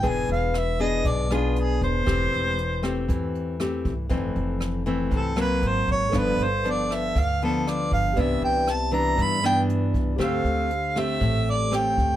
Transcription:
<<
  \new Staff \with { instrumentName = "Harmonica" } { \time 4/4 \key c \major \tempo 4 = 118 gis''8 f''8 e''8 ees''8 d''8 f'8 gis'8 c''8~ | c''2 r2 | r2 a'8 b'8 c''8 des''8 | b'8 c''8 d''8 e''8 f''8 a'8 d''8 f''8 |
e''8 g''8 a''8 bes''8 b''8 g''8 r4 | f''4. e''4 d''8 g''4 | }
  \new Staff \with { instrumentName = "Tine electric piano" } { \time 4/4 \key c \major r1 | r1 | r1 | <a' b' d'' f''>1 |
<g' b' d'' e''>1 | <g' a' c'' e'''>1 | }
  \new Staff \with { instrumentName = "Nylon-string guitar" } { \time 4/4 \key c \major << { <b d' gis'>4 r8 <b d' gis'>4 <b d' gis'>4. | <a c' g'>4 r8 <a c' g'>4. <a c' g'>8 r8 | <e a c'>4. <e a c'>4 <fis bes c'>4. | <f b d'>8 r8 <f b d'>4 r8 <f b d'>4. |
<e b d'>4 r8 <e b d'>4 <e b d'>4. | <a c' g'>4 r8 <a c' g'>4. <a c' g'>4 | } \\ { e2 b,2 | e2 e2 | f,2 c4 r4 | g,2 d2 |
c2 g,2 | d2 a,2 | } >> }
  \new Staff \with { instrumentName = "Upright bass" } { \clef bass \time 4/4 \key c \major e,,8 e,,4. b,,4. e,,8 | e,,8 e,,4. e,4. c,8 | f,,8 f,,4. c,4 aes,,8 aes,,8 | g,,8 g,,4. d,4. g,,8 |
c,8 c,4. g,4. c,8 | d,8 d,4. a,,4. d,8 | }
  \new DrumStaff \with { instrumentName = "Drums" } \drummode { \time 4/4 <hh bd>8 hh8 <hh ss>8 hh8 <hh bd>8 <hh ss>8 hh8 <hh bd>8 | <hh bd ss>8 hh8 hh8 <hh ss>8 <hh bd>8 hh8 <hh ss>8 <hh bd>8 | <hh bd>8 hh8 <hh ss>8 hh8 <hh bd>8 <hh ss>8 hh8 <hh bd>8 | <hh bd ss>8 hh8 hh8 <hh ss>8 <hh bd>8 hh8 <hh ss>8 <hh bd>8 |
<hh bd>8 hh8 <hh ss>8 hh8 <hh bd>8 ss8 hh8 <hh bd>8 | <hh bd ss>8 hh8 hh8 <hh ss>8 <hh bd>8 hh8 <hh ss>8 <hh bd>8 | }
>>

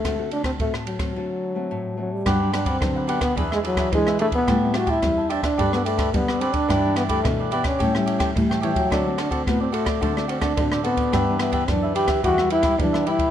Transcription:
<<
  \new Staff \with { instrumentName = "Cavaquinho" } { \time 4/4 \key g \major \tempo 4 = 108 r1 | <d' g' b' fis''>8 <d' g' b' fis''>16 <d' g' b' fis''>16 r16 <g' b' fis''>16 <d' g' b' fis''>16 <g' b' fis''>16 <d' gis' b' e''>16 <gis' b' e''>16 <d' gis' b' e''>16 <d' gis' b' e''>16 r16 <gis' b' e''>16 <d' gis' b' e''>8 | <g' c'' e'' a''>8 <g' c'' e'' a''>16 <g' c'' e'' a''>16 r16 <c'' e'' a''>16 <g' c'' e'' a''>16 <c'' e'' a''>16 <g' a' b' d''>16 <a' b' d''>16 <g' a' b' d''>16 <g' a' b' d''>16 r16 <a' b' d''>16 <g' a' b' d''>8 | <e' g' b' d''>8 <e' g' b' d''>16 <e' g' b' d''>16 r16 <g' b' d''>16 <e' g' b' d''>16 <b' d''>16 <g' a' cis'' g''>16 <a' cis'' g''>16 <g' a' cis'' g''>16 <g' a' cis'' g''>16 r16 <a' cis'' g''>16 <g' a' cis'' g''>8 |
<fis' a' c'' d''>8 <fis' a' c'' d''>16 <fis' a' c'' d''>16 r16 <a' c'' d''>16 <fis' a' c'' d''>16 <a' c'' d''>16 <fis' a' c'' d''>16 <a' c'' d''>16 <fis' a' c'' d''>16 <fis' a' c'' d''>16 r16 <a' c'' d''>16 <fis' a' c'' d''>8 | <d' g' b' e''>8 <d' g' b' e''>16 <d' g' b' e''>16 r16 <g' b' e''>16 <d' g' b' e''>16 <g' b' e''>16 <e' g' b' e''>16 <g' b' e''>16 <e' g' b' e''>16 <e' g' b' e''>16 r16 <g' b' e''>16 <e' g' b' e''>8 | }
  \new Staff \with { instrumentName = "Nylon-string guitar" } { \time 4/4 \key g \major << { <a c' fis'>16 <a c' fis'>8. <a c' fis'>8. <a c' fis'>16 <a c' fis'>8. <a c' fis'>8. <a c' fis'>8 | <fis b d'>16 <fis b d'>8. <fis b d'>8. r16 <b d' gis'>4 <b d' gis'>16 r16 <b d' gis'>16 r16 | <g c' e'>16 <g c' e'>8. <g c' e'>8. r16 <b d' a'>16 <b d' a'>8. <b d' a'>16 r16 <b d' a'>8 | <e b d'>16 <e b d'>8. <e b d'>8. r16 <g cis' e'>16 <g cis' e'>8. <g cis' e'>8 <g cis' e'>16 r16 |
<a c' fis'>16 <a c' fis'>8. <a c' fis'>4 <a c' fis'>16 <a c' fis'>8 <a c' fis'>16 <a c' fis'>8 <a c' fis'>16 r16 | <e b d'>16 <e b d'>8. <e b d'>4 <g b e'>16 <g b e'>8 <g b e'>16 <g b e'>8 <g b e'>16 r16 | } \\ { d4 a,4 d4 a,4 | g,4 d4 e4 b,4 | a,4 e4 g4 d4 | g,4 g,4 a,4 e4 |
d4 a,4 d4 a,4 | g,4 d4 e4 b,4 | } >> }
  \new Staff \with { instrumentName = "Trombone" } { \time 4/4 \key g \major a8 d'16 c'16 a8 fis2 fis16 g16~ | g8 d'16 c'8. b16 b8 gis16 fis8 gis8 a16 b16~ | b8 fis'16 e'8. d'16 d'8 b16 a8 b8 c'16 d'16~ | d'8 b16 a8. b16 cis'4~ cis'16 r8 e16 fis16~ |
fis8 d'16 c'16 b16 c'16 a4 c'16 d'8. b8~ | b8 b8 d'8 g'8 fis'8 e'8 d'8 e'8 | }
  \new Staff \with { instrumentName = "Cello" } { \clef bass \time 4/4 \key g \major r1 | g,4 d4 e,4 e4 | a,4 e,4 g,4 g4 | g,4 b,4 a,4 a,4 |
d4 a,4 d4 d4 | g,4 fis,4 e,4 e4 | }
  \new DrumStaff \with { instrumentName = "Drums" } \drummode { \time 4/4 <bd cymr ss>8 cymr16 <bd cymr ss>16 <bd cymr>16 ss16 cymr16 <bd cymr ss>16 r4 r4 | <bd cymr ss>8 <cymr ss>16 <bd cymr>16 <bd cymr ss>8 cymr16 <bd cymr ss>16 <bd cymr>16 ss16 cymr16 <bd cymr ss>16 <bd cymr>16 ss16 cymr16 <bd cymr>16 | <bd cymr ss>8 <cymr ss>16 <bd cymr>16 <bd cymr ss>8 cymr16 <bd cymr ss>16 <bd cymr>16 ss16 cymr16 <bd cymr ss>16 <bd cymr>16 ss16 cymr16 <bd cymr>16 | <bd cymr ss>8 <cymr ss>16 <bd cymr>16 <bd cymr ss>8 cymr16 <bd cymr ss>16 <bd cymr>16 ss16 cymr16 <bd cymr ss>16 <bd cymr>16 ss16 cymr16 <bd cymr>16 |
<bd cymr ss>8 <cymr ss>16 <bd cymr>16 <bd cymr ss>8 cymr16 <bd cymr ss>16 <bd cymr>16 ss16 cymr16 <bd cymr ss>16 <bd cymr>16 ss16 cymr16 <bd cymr>16 | <bd cymr ss>8 <cymr ss>16 <bd cymr>16 <bd cymr ss>8 cymr16 <bd cymr ss>16 <bd cymr>16 ss16 cymr16 <bd cymr ss>16 <bd cymr>16 ss16 cymr16 <bd cymr>16 | }
>>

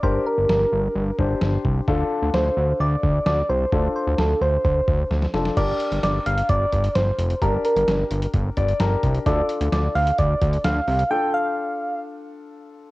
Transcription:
<<
  \new Staff \with { instrumentName = "Soft synth lead" } { \time 4/4 \key g \minor \tempo 4 = 130 c''8 bes'8 bes'2 r4 | r4 c''4 d''4 d''8 c''8~ | c''8 c''8 a'8 c''8 c''4. r8 | d''4 d''8 f''8 d''4 c''4 |
bes'8 bes'4. r2 | d''4 d''8 f''8 d''4 f''4 | g''8 f''4. r2 | }
  \new Staff \with { instrumentName = "Grand piano" } { \time 4/4 \key g \minor << { r1 | r1 | r1 | r1 |
r2 r8 d''8 bes''4 | r1 | r1 | } \\ { <d' g' bes'>2~ <d' g' bes'>8 <d' g' c''>4. | <d' f' a'>1 | <d' f' a'>2.~ <d' f' a'>8 <d' f' a'>8 | <d' g' bes'>1 |
<d' g' bes'>2. <d' g' bes'>4 | <d' f' a'>1 | <d' f' a'>1 | } >> }
  \new Staff \with { instrumentName = "Analog synth bass" } { \clef bass \time 4/4 \key g \minor g,,8 r16 g,,16 g,,8 g,,8 g,,8 g,,8 g,,8 c,8 | d,8 r16 d,16 d,8 d,8 d,8 d,8 d,8 c,8 | d,8 r16 d,16 d,8 d,8 d,8 d,8 d,8 f,,8 | g,,8 r16 g,,16 g,,8 g,,8 g,,8 g,,8 g,,8 f,,8 |
g,,8 r16 g,,16 g,,8 g,,8 g,,8 g,,8 g,,8 c,8 | d,8 r16 d,16 d,8 d,8 d,8 d,8 d,8 c,8 | r1 | }
  \new DrumStaff \with { instrumentName = "Drums" } \drummode { \time 4/4 bd4 sn4 r8 bd8 sn8 bd8 | bd4 sn4 r8 bd8 sn4 | bd4 sn4 bd8 bd8 sn16 sn16 sn16 sn16 | <cymc hh bd>8 hh16 hh16 <hh sn>8 hh16 hh16 <hh bd>8 <hh bd>16 hh16 <hh sn>8 hh16 hh16 |
<hh bd>8 hh16 hh16 <hh sn>8 hh16 hh16 <hh bd>8 <hh bd>16 hh16 <hh sn>8 <hh bd>16 hh16 | <hh bd>8 hh16 hh16 <hh sn>8 hho16 hh16 <hh bd>8 <hh bd>16 hh16 <hh sn>8 hho16 hh16 | r4 r4 r4 r4 | }
>>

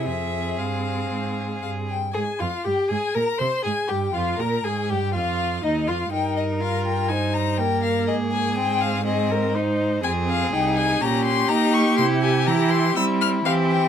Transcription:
<<
  \new Staff \with { instrumentName = "Violin" } { \time 4/4 \key f \minor \tempo 4 = 122 e''4 f''2 f''8 g''8 | \key aes \major aes''8 f''8 g''8 aes''8 bes''8 c'''8 aes''8 g''8 | f''8 bes''8 aes''8 g''8 f''4 ees''8 f''8 | g''8 ees''8 f''8 g''8 aes''8 bes''8 g''8 f''8 |
ees''8 aes''8 g''8 f''8 ees''4 r4 | \key c \phrygian aes''8 f''8 g''8 aes''8 bes''8 c'''8 bes''8 des'''8 | c'''8 aes''8 bes''8 c'''8 e'''8 f'''8 f''8 g''8 | }
  \new Staff \with { instrumentName = "Violin" } { \time 4/4 \key f \minor aes'2.~ aes'8 r8 | \key aes \major aes'8 f'8 g'8 aes'8 bes'8 c''8 aes'8 g'8 | f'8 bes'8 aes'8 g'8 f'4 ees'8 f'8 | bes'2 c''4 bes'4 |
aes'2 aes'8 bes'8 c''4 | \key c \phrygian aes'2 g'2~ | g'2 e'4 g'4 | }
  \new Staff \with { instrumentName = "Viola" } { \time 4/4 \key f \minor c'2.~ c'8 r8 | \key aes \major aes'8 f'8 g'8 aes'8 bes'8 c''8 aes'8 g'8 | f'8 bes'8 aes'8 g'8 f'4 ees'8 f'8 | ees'4 f'4 ees'4 bes4~ |
bes4 c'4 c'4 ees'4 | \key c \phrygian c'4 ees'4 des'4 ees'4 | e'4 e'4 c'4 c'4 | }
  \new Staff \with { instrumentName = "Cello" } { \clef bass \time 4/4 \key f \minor f,4 g,4 aes,4 g,4 | \key aes \major aes,8 f,8 g,8 aes,8 bes,8 c8 aes,8 g,8 | f,8 bes,8 aes,8 g,8 f,4 ees,8 f,8 | g,1 |
aes,1 | \key c \phrygian f,4 c,4 bes,4 bes4 | c4 e4 g4 e4 | }
>>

